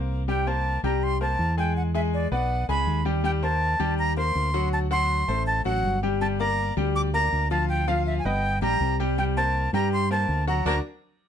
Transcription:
0.00 0.77 C2 medium
0.00 0.21 A#3 medium
0.00 0.21 A#4 medium
0.00 0.21 C5 medium
0.28 0.43 G3 medium
0.28 0.43 G4 medium
0.28 0.43 G5 medium
0.28 0.49 G5 medium
0.47 0.77 A#3 medium
0.47 0.77 A#4 medium
0.47 0.77 C5 medium
0.47 0.84 A5 medium
0.83 1.35 C2 medium
0.83 1.14 G3 medium
0.83 1.14 G4 medium
0.83 1.14 G5 medium
0.83 1.05 A#5 medium
1.03 1.21 C6 loud
1.21 1.51 A#3 medium
1.21 1.51 A#4 medium
1.21 1.51 C5 medium
1.21 1.56 A5 loud
1.39 2.26 E2 medium
1.57 1.88 G#3 medium
1.57 1.88 G#4 medium
1.57 1.75 G5 medium
1.57 1.88 G#5 medium
1.77 1.83 F#5 medium
1.94 2.25 G#3 medium
1.94 2.25 G#4 medium
1.94 2.01 E5 medium
1.94 2.25 G#5 medium
2.14 2.31 D5 medium
2.31 2.66 B1 medium
2.31 2.62 B3 medium
2.31 2.62 B4 medium
2.31 2.62 D5 medium
2.31 2.67 F#5 medium
2.69 2.86 C#2 medium
2.69 2.99 G#3 medium
2.69 2.99 G#4 medium
2.69 2.99 G#5 medium
2.69 3.04 B5 loud
2.87 3.74 D#2 loud
3.05 3.21 G3 medium
3.05 3.21 G4 medium
3.05 3.21 G5 medium
3.24 3.39 G3 medium
3.24 3.39 G4 medium
3.24 3.40 G5 medium
3.24 3.31 G5 loud
3.42 3.73 A#3 medium
3.42 3.73 A#4 medium
3.42 3.73 C5 medium
3.42 3.95 A5 loud
3.80 4.32 D#2 medium
3.80 4.10 G3 medium
3.80 4.10 G4 medium
3.80 4.11 G5 medium
3.99 4.16 A#5 loud
4.17 4.47 A#3 medium
4.17 4.48 A#4 medium
4.17 4.48 C5 medium
4.17 4.69 C6 loud
4.35 5.22 D2 medium
4.54 4.84 F#3 medium
4.54 4.85 F#4 medium
4.54 4.85 F#5 medium
4.73 4.79 A5 medium
4.91 5.21 F#3 medium
4.91 5.21 F#4 medium
4.91 5.22 F#5 medium
4.91 5.43 C6 loud
5.28 5.63 A1 medium
5.28 5.59 A3 medium
5.28 5.59 A4 medium
5.28 5.59 C5 medium
5.47 5.64 A5 loud
5.65 5.83 A1 medium
5.65 5.96 F#3 medium
5.65 5.96 F#4 medium
5.65 6.00 F#5 loud
5.65 5.96 F#5 medium
5.84 6.71 G1 medium
6.03 6.18 G3 medium
6.03 6.18 G4 medium
6.03 6.18 G5 medium
6.21 6.36 G3 medium
6.21 6.36 G4 medium
6.21 6.37 G5 medium
6.21 6.27 A5 loud
6.40 6.70 A#3 medium
6.40 6.70 A#4 medium
6.40 6.70 D5 medium
6.40 6.74 A#5 loud
6.77 7.28 D2 loud
6.77 7.07 G3 medium
6.77 7.07 G4 medium
6.77 7.08 G5 medium
6.96 7.02 D6 loud
7.14 7.44 A#3 medium
7.14 7.44 A#4 medium
7.14 7.44 D5 medium
7.14 7.48 A#5 loud
7.32 8.19 D2 medium
7.51 7.81 F3 medium
7.51 7.81 F4 medium
7.51 7.82 F5 medium
7.51 7.68 A5 loud
7.69 7.90 G5 medium
7.88 8.18 F3 medium
7.88 8.18 F4 medium
7.88 8.06 F5 medium
7.88 8.19 F5 medium
8.06 8.17 E5 medium
8.19 8.26 G#5 medium
8.25 8.59 G1 loud
8.25 8.55 B3 medium
8.25 8.56 B4 medium
8.25 8.56 D#5 medium
8.25 8.61 G5 loud
8.62 8.79 A#1 medium
8.62 8.92 G3 medium
8.62 8.92 G4 medium
8.62 8.93 G5 medium
8.62 8.97 A#5 loud
8.80 9.67 C2 medium
9.00 9.15 G3 medium
9.00 9.15 G4 medium
9.00 9.15 G5 medium
9.18 9.33 G3 medium
9.18 9.33 G4 medium
9.18 9.24 G5 medium
9.18 9.33 G5 medium
9.37 9.67 A#3 medium
9.37 9.67 A#4 medium
9.37 9.67 C5 medium
9.37 9.71 A5 loud
9.73 10.25 G2 loud
9.73 10.04 G3 medium
9.73 10.04 G4 medium
9.73 10.04 G5 medium
9.73 9.91 A#5 medium
9.93 10.10 C6 loud
10.11 10.41 A#3 medium
10.11 10.41 A#4 medium
10.11 10.41 C5 medium
10.11 10.45 A5 loud
10.29 10.63 D2 loud
10.47 10.62 F#3 medium
10.47 10.63 F#4 medium
10.47 10.63 F#5 medium
10.47 10.65 A#5 medium
10.65 10.79 D2 loud
10.65 10.75 A#3 medium
10.65 10.75 C4 loud
10.65 10.78 D4 medium
10.65 10.75 D4 medium
10.65 10.78 F#4 loud
10.65 10.78 A#4 medium
10.65 10.79 A#5 medium

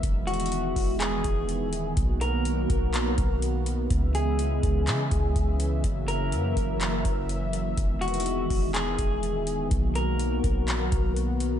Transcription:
0.00 0.73 E1 loud
0.00 3.87 D#3 medium
0.00 1.95 E3 medium
0.00 1.95 G#3 medium
0.00 5.80 B3 medium
0.00 1.93 E5 medium
0.00 kick loud
0.00 closed hi-hat medium
0.27 0.96 F#4 medium
0.27 closed hi-hat soft
0.34 closed hi-hat medium
0.40 closed hi-hat medium
0.46 closed hi-hat medium
0.52 closed hi-hat medium
0.76 1.23 E1 loud
0.76 kick medium
0.76 open hi-hat medium
1.00 1.93 G#4 medium
1.00 clap loud
1.00 closed hi-hat medium
1.24 1.62 E1 loud
1.24 kick medium
1.24 closed hi-hat medium
1.49 closed hi-hat medium
1.61 1.95 D#1 loud
1.73 closed hi-hat medium
1.97 2.67 B1 loud
1.97 3.89 F#3 medium
1.97 3.89 A#3 medium
1.97 3.89 F#4 medium
1.97 kick loud
1.97 closed hi-hat medium
2.21 3.38 A#4 medium
2.21 closed hi-hat medium
2.45 closed hi-hat medium
2.70 2.95 B1 loud
2.70 kick medium
2.70 closed hi-hat medium
2.94 3.07 A#1 loud
2.94 clap loud
2.94 closed hi-hat medium
3.06 3.17 B1 loud
3.18 3.88 B1 loud
3.18 kick medium
3.18 closed hi-hat medium
3.42 closed hi-hat medium
3.66 closed hi-hat medium
3.90 4.60 C#2 loud
3.90 7.74 C#3 medium
3.90 9.67 E3 medium
3.90 5.82 G#3 medium
3.90 9.67 E5 medium
3.90 kick loud
3.90 closed hi-hat medium
4.15 5.80 G#4 medium
4.15 closed hi-hat medium
4.39 closed hi-hat medium
4.63 4.89 C#2 loud
4.63 kick medium
4.63 closed hi-hat medium
4.87 5.10 C#3 loud
4.87 clap loud
4.87 closed hi-hat medium
5.11 5.35 C#2 loud
5.11 kick medium
5.11 closed hi-hat medium
5.36 5.82 C#2 loud
5.36 kick medium
5.36 closed hi-hat medium
5.60 closed hi-hat medium
5.84 6.34 F#1 loud
5.84 7.76 F#3 medium
5.84 7.76 A#3 medium
5.84 kick loud
5.84 closed hi-hat medium
6.08 7.25 A#4 medium
6.08 closed hi-hat medium
6.32 6.55 F#2 loud
6.32 closed hi-hat medium
6.57 7.03 F#1 loud
6.57 kick medium
6.57 closed hi-hat medium
6.81 clap loud
6.81 closed hi-hat medium
7.05 7.75 F#1 loud
7.05 kick medium
7.05 closed hi-hat medium
7.29 closed hi-hat medium
7.53 closed hi-hat medium
7.78 8.47 E1 loud
7.78 11.60 D#3 medium
7.78 9.69 G#3 medium
7.78 11.60 B3 medium
7.78 kick loud
7.78 closed hi-hat medium
8.01 8.70 F#4 medium
8.01 closed hi-hat soft
8.08 closed hi-hat medium
8.14 closed hi-hat medium
8.20 closed hi-hat medium
8.26 closed hi-hat medium
8.50 8.97 E1 loud
8.50 kick medium
8.50 open hi-hat medium
8.74 9.67 G#4 medium
8.74 clap loud
8.74 closed hi-hat medium
8.99 9.36 E1 loud
8.99 kick medium
8.99 closed hi-hat medium
9.23 closed hi-hat medium
9.35 9.69 D#1 loud
9.47 closed hi-hat medium
9.71 10.41 B1 loud
9.71 11.60 F#3 medium
9.71 11.60 A#3 medium
9.71 11.60 F#4 medium
9.71 kick loud
9.71 closed hi-hat medium
9.95 11.12 A#4 medium
9.95 closed hi-hat medium
10.20 closed hi-hat medium
10.44 10.69 B1 loud
10.44 kick medium
10.44 closed hi-hat medium
10.68 10.81 A#1 loud
10.68 clap loud
10.68 closed hi-hat medium
10.80 10.91 B1 medium
10.92 11.60 B1 loud
10.92 kick medium
10.92 closed hi-hat medium
11.16 closed hi-hat medium
11.40 closed hi-hat medium

